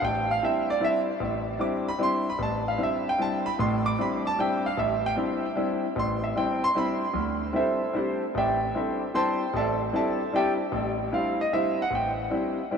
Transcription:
0.02 0.36 A1 medium
0.02 0.29 G5 medium
0.31 0.43 F5 medium
0.42 0.70 G3 medium
0.42 0.70 C4 soft
0.42 0.70 D4 soft
0.42 0.70 E4 medium
0.42 0.69 E5 medium
0.70 0.82 D5 medium
0.80 1.09 G3 medium
0.80 1.09 C4 soft
0.80 1.09 D4 soft
0.80 1.09 E4 medium
0.85 0.99 E5 medium
1.20 1.55 A1 medium
1.59 1.88 G3 medium
1.59 1.88 C4 soft
1.59 1.88 D4 soft
1.59 1.88 E4 medium
1.59 1.86 D6 medium
1.88 2.00 B5 medium
1.98 2.27 G3 medium
1.98 2.27 C4 soft
1.98 2.27 D4 soft
1.98 2.27 E4 medium
2.03 2.27 C6 medium
2.30 2.41 B5 medium
2.39 2.74 A1 medium
2.39 2.67 A5 medium
2.68 2.80 F5 medium
2.78 3.06 G3 medium
2.78 3.06 C4 soft
2.78 3.06 D4 soft
2.78 3.07 E4 medium
2.83 3.07 E5 medium
3.09 3.20 G5 medium
3.18 3.47 G3 medium
3.18 3.46 C4 soft
3.18 3.46 D4 medium
3.18 3.47 E4 medium
3.18 3.46 A5 medium
3.46 3.58 B5 medium
3.59 3.93 A1 medium
3.59 3.93 A2 medium
3.59 3.85 C6 medium
3.86 3.98 D6 loud
3.98 4.26 G3 medium
3.98 4.26 C4 soft
3.98 4.26 D4 soft
3.98 4.26 E4 medium
3.98 4.25 B5 medium
4.27 4.38 A5 medium
4.38 4.66 G3 medium
4.38 4.66 C4 medium
4.38 4.66 D4 medium
4.38 4.66 E4 medium
4.38 4.65 G5 medium
4.66 4.78 F5 medium
4.77 5.12 A1 medium
4.77 5.04 E5 medium
5.06 5.13 G5 loud
5.16 5.45 G3 medium
5.16 5.44 C4 soft
5.16 5.45 D4 soft
5.16 5.45 E4 medium
5.55 5.84 G3 medium
5.55 5.84 C4 medium
5.55 5.84 D4 medium
5.55 5.85 E4 medium
5.96 6.31 A1 medium
5.96 6.24 C6 medium
6.24 6.36 E5 medium
6.35 6.63 G3 medium
6.35 6.64 C4 soft
6.35 6.64 D4 medium
6.35 6.64 E4 medium
6.35 6.62 G5 medium
6.64 6.76 C6 loud
6.75 7.03 G3 medium
6.75 7.03 C4 soft
6.75 7.03 D4 medium
6.75 7.04 E4 medium
6.75 6.93 B5 medium
7.14 7.49 D2 medium
7.53 7.82 G3 medium
7.53 7.82 C4 soft
7.53 7.82 D4 soft
7.53 7.56 E4 medium
7.53 7.93 A4 medium
7.53 7.92 E5 medium
7.57 7.93 E4 medium
7.57 7.93 C5 medium
7.93 8.22 G3 soft
7.93 7.96 C4 soft
7.93 8.22 C4 soft
7.93 8.22 D4 soft
7.93 8.22 E4 medium
7.93 8.22 G4 soft
7.93 8.21 A4 soft
7.93 8.21 C5 medium
8.35 8.69 A1 medium
8.35 8.73 G4 medium
8.35 8.73 D5 medium
8.35 8.73 E5 medium
8.35 8.73 G5 medium
8.75 9.02 G3 soft
8.75 9.02 C4 soft
8.75 9.03 D4 soft
8.75 9.03 E4 medium
8.75 9.01 A4 soft
8.75 9.01 C5 soft
8.75 9.01 E5 medium
9.14 9.42 G3 soft
9.14 9.42 C4 soft
9.14 9.42 D4 soft
9.14 9.42 E4 medium
9.14 9.52 C5 medium
9.14 9.51 G5 medium
9.14 9.52 A5 medium
9.14 9.51 C6 medium
9.54 9.88 A1 medium
9.54 9.81 A4 medium
9.54 9.81 D5 medium
9.54 9.81 E5 medium
9.54 9.81 A5 medium
9.92 10.21 G3 medium
9.92 10.21 C4 soft
9.92 10.21 D4 soft
9.92 10.21 E4 medium
9.92 10.32 A4 medium
9.92 10.31 D5 medium
9.92 10.32 E5 medium
9.92 10.31 A5 medium
10.33 10.61 G3 medium
10.33 10.61 C4 soft
10.33 10.61 D4 soft
10.33 10.61 E4 medium
10.33 10.51 G4 medium
10.33 10.51 D5 medium
10.33 10.51 E5 medium
10.33 10.51 G5 medium
10.72 11.07 A1 medium
11.12 11.40 G3 soft
11.12 11.40 C4 soft
11.12 11.40 D4 soft
11.12 11.40 E4 medium
11.12 11.39 F5 medium
11.41 11.53 D#5 medium
11.53 11.80 G3 medium
11.53 11.80 C4 soft
11.53 11.80 D4 soft
11.53 11.81 E4 medium
11.53 11.78 E5 medium
11.82 11.93 F#5 medium
11.91 12.26 A1 medium
11.95 12.10 G5 medium
12.30 12.59 G3 medium
12.30 12.59 C4 soft
12.30 12.59 D4 soft
12.30 12.59 E4 medium
12.71 12.78 G3 medium
12.71 12.78 C4 soft
12.71 12.78 D4 soft
12.71 12.78 E4 medium

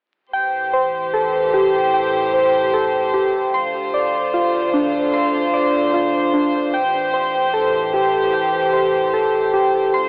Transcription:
0.34 3.50 A2 medium
0.34 3.50 E3 medium
0.34 3.50 G4 medium
0.34 3.50 C5 medium
0.34 1.92 G5 medium
0.74 2.32 C5 medium
1.14 2.72 A4 medium
1.54 3.12 G4 loud
1.94 3.54 G5 medium
2.34 3.54 C5 medium
2.74 3.54 A4 medium
3.14 3.54 G4 loud
3.54 6.70 D2 medium
3.54 6.70 D3 medium
3.54 6.70 F4 medium
3.54 9.90 C5 medium
3.54 5.12 C6 medium
3.94 5.52 D5 medium
4.34 5.92 F4 medium
4.74 6.32 D4 medium
5.14 6.74 C6 loud
5.54 6.74 D5 medium
5.94 6.74 F4 medium
6.33 6.74 D4 medium
6.74 9.90 A2 medium
6.74 9.90 E3 medium
6.74 9.90 G4 medium
6.74 8.32 G5 loud
7.14 8.72 C5 medium
7.54 9.12 A4 medium
7.94 9.52 G4 loud
8.34 9.94 G5 medium
8.74 9.94 C5 medium
9.14 9.94 A4 medium
9.54 9.94 G4 medium
9.94 10.09 D2 medium
9.94 10.09 D3 medium
9.94 10.09 F4 medium
9.94 10.09 C5 medium
9.94 10.09 C6 medium

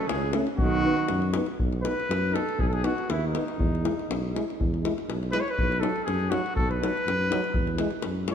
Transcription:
0.07 0.37 C#2 medium
0.07 0.33 C#3 medium
0.07 0.34 G#4 medium
0.07 davul high medium
0.33 0.44 A3 medium
0.33 0.47 C#4 medium
0.33 davul high medium
0.47 davul high soft
0.58 0.86 B1 medium
0.58 1.30 D#3 loud
0.58 1.29 F#4 loud
0.58 davul low medium
0.84 0.95 B3 medium
0.84 0.94 D#4 medium
0.97 davul high soft
1.08 1.37 F#2 medium
1.08 davul high medium
1.22 davul high soft
1.34 1.45 B3 medium
1.34 1.44 D#4 medium
1.34 davul high medium
1.46 davul high soft
1.60 1.87 B1 medium
1.60 davul low medium
1.73 davul high soft
1.82 1.95 B3 soft
1.82 1.93 D#4 medium
1.82 2.36 B4 medium
1.82 davul high medium
2.00 davul high soft
2.09 2.37 F#2 medium
2.09 davul high medium
2.32 2.44 B3 medium
2.32 2.42 D#4 medium
2.32 2.62 A4 medium
2.32 davul high medium
2.49 davul high soft
2.58 2.86 B1 medium
2.58 2.69 G#4 medium
2.58 davul low medium
2.68 2.75 A4 medium
2.73 2.86 G#4 medium
2.73 davul high soft
2.84 2.94 B3 medium
2.84 2.94 D#4 medium
2.84 3.12 F#4 medium
2.84 davul high medium
2.98 davul high soft
3.09 3.36 D#2 medium
3.09 3.26 E4 medium
3.09 davul high medium
3.27 4.46 D#4 medium
3.33 3.43 B3 medium
3.33 3.44 D#4 medium
3.33 davul high medium
3.48 davul high soft
3.58 3.85 E2 medium
3.58 davul low medium
3.75 davul high soft
3.83 3.93 G#3 medium
3.83 3.94 E4 medium
3.83 davul high medium
3.99 davul high soft
4.08 4.36 B1 medium
4.08 davul high medium
4.34 4.44 G#3 medium
4.34 4.44 E4 medium
4.34 davul high medium
4.50 davul high soft
4.59 4.86 E2 medium
4.59 davul low medium
4.74 davul high soft
4.84 4.93 G#3 medium
4.84 4.94 E4 medium
4.84 davul high medium
4.98 davul high soft
5.09 5.35 B1 medium
5.09 davul high medium
5.23 davul high soft
5.32 5.43 G#3 medium
5.32 5.42 E4 medium
5.32 5.42 B4 loud
5.32 davul high medium
5.40 5.52 C#5 medium
5.48 5.81 B4 medium
5.48 davul high soft
5.58 5.85 B1 medium
5.58 davul low medium
5.72 davul high soft
5.80 5.92 F#3 medium
5.80 5.91 D#4 medium
5.80 6.04 A4 medium
5.80 davul high medium
5.96 davul high soft
6.05 6.35 F#2 medium
6.05 6.32 G#4 medium
6.05 davul high medium
6.29 6.41 F#3 medium
6.29 6.40 D#4 medium
6.29 6.55 F#4 medium
6.29 davul high medium
6.46 davul high soft
6.55 6.83 B1 medium
6.55 6.71 A4 medium
6.55 davul low medium
6.71 7.92 B4 loud
6.71 davul high soft
6.81 6.91 F#3 medium
6.81 6.91 D#4 medium
6.81 davul high medium
6.97 davul high soft
7.06 7.33 F#2 medium
7.06 davul high medium
7.29 7.41 F#3 medium
7.29 7.39 D#4 medium
7.29 davul high medium
7.44 davul high soft
7.54 7.82 E2 medium
7.54 davul low medium
7.67 davul high soft
7.77 7.89 G#3 medium
7.77 7.87 E4 medium
7.77 davul high medium
7.91 davul high soft
8.02 8.32 F#2 medium
8.02 davul high medium
8.28 8.35 G#3 medium
8.28 8.35 E4 medium
8.28 8.35 C#5 medium
8.28 davul high medium

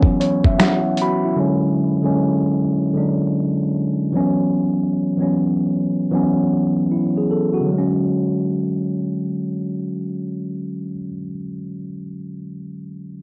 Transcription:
0.00 1.39 E3 medium
0.00 1.37 F#3 medium
0.00 1.39 B3 medium
0.00 1.39 C#4 medium
0.00 kick medium
0.20 0.44 C#5 medium
0.20 closed hi-hat medium
0.44 0.58 E5 medium
0.44 kick medium
0.59 0.96 E4 medium
0.59 0.95 F#5 medium
0.59 finger snap medium
0.59 snare loud
0.59 closed hi-hat medium
0.97 closed hi-hat medium
1.02 1.25 F#4 medium
1.02 1.37 B5 medium
1.25 1.62 E4 medium
1.36 1.77 D3 medium
1.36 1.77 F#3 medium
1.36 1.78 G#3 medium
1.40 1.79 C#4 medium
2.02 2.65 D3 medium
2.02 2.65 F#3 medium
2.02 2.66 G#3 medium
2.02 2.67 C#4 medium
2.93 4.04 D3 medium
2.93 4.05 F#3 medium
2.93 4.06 G#3 medium
2.98 4.07 D4 medium
4.12 4.92 E3 medium
4.12 4.93 F#3 medium
4.12 4.93 B3 medium
4.17 4.94 C#4 medium
5.17 5.81 E3 medium
5.17 5.81 F#3 medium
5.17 5.82 B3 medium
5.22 5.83 C#4 medium
6.11 7.21 E3 medium
6.11 7.22 F#3 medium
6.11 7.22 B3 medium
6.11 7.23 C#4 medium
6.91 7.15 E4 medium
7.17 7.30 G#4 soft
7.31 7.55 A4 medium
7.54 7.92 F#4 medium
7.61 10.93 D3 medium
7.67 10.99 F#3 medium
7.72 11.05 G#3 medium
7.78 11.10 C#4 medium

